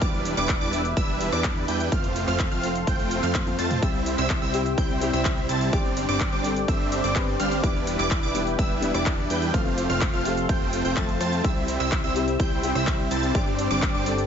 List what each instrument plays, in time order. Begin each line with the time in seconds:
Already playing: analog synth pad G5 D6
0.02 analog synth bass E1, supersaw synth G3 D4 E4 B4 D5, analog synth pad B4 E5, synth pluck D6, kick, closed hi-hat, shaker
0.14 shaker
0.25 open hi-hat, shaker
0.37 analog synth bass E1, supersaw synth G3 D4 E4 B4 D5, synth pluck D6, clap, closed hi-hat, shaker
0.49 kick, clap, closed hi-hat, shaker
0.61 analog synth bass E1, supersaw synth G3 D4 E4 B4 D5, synth pluck D6, shaker
0.73 open hi-hat, shaker
0.85 closed hi-hat, shaker
0.97 analog synth bass E1, supersaw synth G3 D4 E4 B4 E5, synth pluck E6, kick, closed hi-hat, shaker
1.09 shaker
1.21 open hi-hat, shaker
1.32 analog synth bass E2, supersaw synth G3 D4 E4 B4 D5, synth pluck D6, cross-stick, closed hi-hat, shaker
1.44 kick, clap, closed hi-hat, shaker
1.57 shaker
1.68 analog synth bass E2, supersaw synth G3 D4 E4 B4 G5, synth pluck G6, open hi-hat, shaker
1.80 closed hi-hat, shaker
1.92 analog synth bass F1, supersaw synth A3 C4 F4 C5 F5, analog synth pad C4 A4 F5 C6, synth pluck F6, kick, closed hi-hat, shaker
2.04 closed hi-hat, shaker
2.16 open hi-hat, shaker
2.28 analog synth bass F1, supersaw synth A3 C4 F4 C5 F5, synth pluck F6, cross-stick, clap, closed hi-hat, shaker
2.39 kick, clap, closed hi-hat, shaker
2.52 analog synth bass F1, supersaw synth A3 C4 F4 C5 F5, synth pluck F6, closed hi-hat, shaker
2.63 open hi-hat, shaker
2.75 closed hi-hat, shaker
2.87 analog synth bass F1, supersaw synth A3 C4 F4 C5 G5, synth pluck G6, kick, closed hi-hat, shaker
2.99 closed hi-hat, shaker
3.11 open hi-hat, shaker
3.23 analog synth bass F2, supersaw synth A3 C4 F4 C5 F5, synth pluck F6, clap, closed hi-hat, shaker
3.35 kick, clap, closed hi-hat, high tom, shaker
3.47 closed hi-hat, high tom, shaker
3.59 analog synth bass F2, supersaw synth A3 C4 F4 C5 A5, synth pluck A6, cross-stick, open hi-hat, shaker
3.71 closed hi-hat, mid tom, shaker
3.81 analog synth bass C2, grand piano G3 C4 E4 G4, supersaw synth G3 C4 E4 C5 E5, analog synth pad E5 G5 E6, synth pluck E6, kick, closed hi-hat, shaker
3.95 shaker
4.06 open hi-hat, shaker
4.18 analog synth bass C2, supersaw synth G3 C4 E4 C5 E5, synth pluck E6, clap, closed hi-hat, shaker
4.30 kick, clap, closed hi-hat, shaker
4.42 analog synth bass C2, supersaw synth G3 C4 E4 C5 E5, synth pluck E6, shaker
4.53 grand piano G3 C4 E4 G4, open hi-hat, shaker
4.66 closed hi-hat, shaker
4.78 analog synth bass C2, supersaw synth G3 C4 E4 C5 G5, synth pluck G6, kick, closed hi-hat, shaker
4.90 shaker
5.00 grand piano G3 C4 E4 G4, open hi-hat, shaker
5.13 analog synth bass C2, supersaw synth G3 C4 E4 C5 E5, synth pluck E6, cross-stick, closed hi-hat, shaker
5.25 kick, clap, closed hi-hat, shaker
5.38 shaker
5.49 analog synth bass C2, supersaw synth G3 C4 E4 C5 A5, synth pluck A6, open hi-hat, shaker
5.61 closed hi-hat, shaker
5.72 analog synth bass G1, grand piano G3 C4 D4 G4, supersaw synth G3 C4 D4 C5 D5, analog synth pad D5 G5 D6, synth pluck D6, kick, closed hi-hat, shaker
5.85 shaker
5.97 open hi-hat, shaker
6.09 analog synth bass G1, supersaw synth G3 C4 D4 C5 D5, synth pluck D6, closed hi-hat, shaker
6.20 kick, clap, closed hi-hat, shaker
6.32 analog synth bass G1, supersaw synth G3 C4 D4 C5 D5, synth pluck D6, shaker
6.43 grand piano G3 C4 D4 A4, open hi-hat, shaker
6.56 closed hi-hat, shaker
6.68 analog synth bass G1, supersaw synth G3 C4 D4 C5 E5, synth pluck E6, kick, closed hi-hat, shaker
6.81 shaker
6.92 open hi-hat, shaker
7.04 analog synth bass G1, supersaw synth G3 C4 D4 C5 D5, synth pluck D6, closed hi-hat, shaker
7.15 grand piano G3 C4 D4 B4, kick, clap, closed hi-hat, shaker
7.28 shaker
7.40 analog synth bass G1, supersaw synth G3 C4 D4 C5 F5, synth pluck F6, cross-stick, open hi-hat, shaker
7.52 closed hi-hat, shaker
7.62 analog synth bass E1, grand piano G3 B3 D4 E4, supersaw synth G3 D4 E4 B4 D5, analog synth pad B4 E5 G5, synth pluck D6, kick, closed hi-hat, shaker
7.76 shaker
7.87 open hi-hat, shaker
7.99 analog synth bass E1, supersaw synth G3 D4 E4 B4 D5, synth pluck D6, clap, closed hi-hat, shaker
8.11 kick, clap, closed hi-hat, shaker
8.23 analog synth bass E1, supersaw synth G3 D4 E4 B4 D5, synth pluck D6, shaker
8.34 grand piano G3 B3 D4 E4, open hi-hat, shaker
8.47 closed hi-hat, shaker
8.59 analog synth bass E1, supersaw synth G3 D4 E4 B4 E5, synth pluck E6, kick, closed hi-hat, shaker
8.71 shaker
8.81 grand piano G3 B3 D4 E4, open hi-hat, shaker
8.94 analog synth bass E1, supersaw synth G3 D4 E4 B4 D5, synth pluck D6, cross-stick, closed hi-hat, shaker
9.06 kick, clap, closed hi-hat, shaker
9.19 shaker
9.30 analog synth bass E2, supersaw synth G3 D4 E4 B4 G5, synth pluck G6, open hi-hat, shaker
9.42 closed hi-hat, shaker
9.53 analog synth bass F1, grand piano F3 A3 C4 F4, supersaw synth A3 C4 F4 C5 F5, analog synth pad C4 A4 F5 C6, synth pluck F6, kick, closed hi-hat, shaker
9.66 shaker
9.78 open hi-hat, shaker
9.90 analog synth bass F1, supersaw synth A3 C4 F4 C5 F5, synth pluck F6, cross-stick, closed hi-hat, shaker
10.01 kick, clap, closed hi-hat, shaker
10.13 analog synth bass F1, supersaw synth A3 C4 F4 C5 F5, synth pluck F6, shaker
10.24 grand piano F3 A3 C4 G4, open hi-hat, shaker
10.37 closed hi-hat, shaker
10.49 analog synth bass F1, supersaw synth A3 C4 F4 C5 G5, synth pluck G6, kick, closed hi-hat, shaker
10.62 shaker
10.73 open hi-hat, shaker
10.85 analog synth bass F1, supersaw synth A3 C4 F4 C5 G5, synth pluck G6, closed hi-hat, shaker
10.96 analog synth bass F1, grand piano F3 A3 C4 A4, supersaw synth A3 C4 F4 C5 A5, synth pluck A6, kick, clap, closed hi-hat, shaker
11.09 closed hi-hat, shaker
11.21 analog synth bass F2, supersaw synth A3 C4 F4 C5 A5, synth pluck A6, cross-stick, open hi-hat, shaker
11.33 closed hi-hat, shaker
11.43 analog synth bass C2, grand piano G3 C4 E4 G4, supersaw synth G3 C4 E4 C5 E5, analog synth pad E5 G5 E6, synth pluck E6, kick, closed hi-hat, shaker
11.57 shaker
11.68 open hi-hat, shaker
11.80 analog synth bass C2, supersaw synth G3 C4 E4 C5 E5, synth pluck E6, clap, closed hi-hat, shaker
11.92 kick, clap, closed hi-hat, shaker
12.04 analog synth bass C2, supersaw synth G3 C4 E4 C5 E5, synth pluck E6, shaker
12.15 grand piano G3 C4 E4 G4, open hi-hat, shaker
12.28 closed hi-hat, shaker
12.40 analog synth bass C2, supersaw synth G3 C4 E4 C5 G5, synth pluck G6, kick, closed hi-hat, shaker
12.52 shaker
12.62 grand piano G3 C4 E4 G4, open hi-hat, shaker
12.75 analog synth bass C2, supersaw synth G3 C4 E4 C5 E5, synth pluck E6, cross-stick, closed hi-hat, shaker
12.87 kick, clap, closed hi-hat, shaker
13.00 shaker
13.11 analog synth bass C2, supersaw synth G3 C4 E4 C5 A5, synth pluck A6, open hi-hat, shaker
13.23 closed hi-hat, shaker
13.34 analog synth bass G1, grand piano G3 C4 D4 G4, supersaw synth G3 C4 D4 C5 D5, analog synth pad D5 D6, synth pluck D6, kick, closed hi-hat, shaker
13.47 shaker
13.59 open hi-hat, shaker
13.71 analog synth bass G1, supersaw synth G3 C4 D4 C5 D5, synth pluck D6, closed hi-hat, shaker
13.82 kick, clap, closed hi-hat, shaker
13.94 analog synth bass G1, supersaw synth G3 C4 D4 C5 D5, synth pluck D6, shaker
14.05 grand piano G3 C4 D4 A4, open hi-hat, shaker
14.18 closed hi-hat, shaker